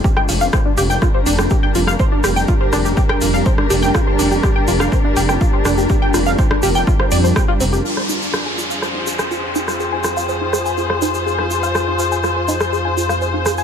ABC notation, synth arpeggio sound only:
X:1
M:4/4
L:1/16
Q:1/4=123
K:Fdor
V:1 name="Synth arpeggio sound"
G g F f c D G g F c D G G g F f | c D G g F c D G G g F f c D G g | F c D G G g F f c D G g F c D G | G g F f c D G g F c d c g F C G |
F c E A A a F f c E A a F c E A | A a F f c E A a F c E A A a F f | c E A a F c E A A a F f c E A a |]